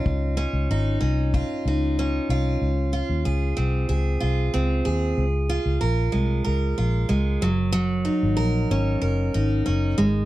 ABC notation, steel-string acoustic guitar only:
X:1
M:4/4
L:1/8
Q:1/4=94
K:Db
V:1 name="Steel-string acoustic guitar"
[DEF] D E D F E D F | z F A C A F C A | z F B A, B F A, G, | G, E B D B E D A, |]